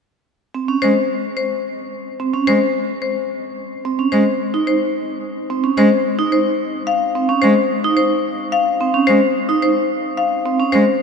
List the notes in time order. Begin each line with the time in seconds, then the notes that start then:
0.55 C4
0.68 C#4
0.82 G#3 C5
1.37 C5
2.20 C4
2.34 C#4
2.47 G#3 C5
3.02 C5
3.85 C4
3.99 C#4
4.12 G#3 C5
4.54 D#4
4.67 C5
5.50 C4
5.64 C#4
5.77 G#3 C5
6.19 D#4
6.32 C5
6.87 F5
7.15 C4
7.29 C#4
7.42 G#3 C5
7.84 D#4
7.97 C5
8.52 F5
8.80 C4
8.94 C#4
9.07 G#3 C5
9.49 D#4
9.62 C5
10.17 F5
10.45 C4
10.60 C#4
10.72 G#3 C5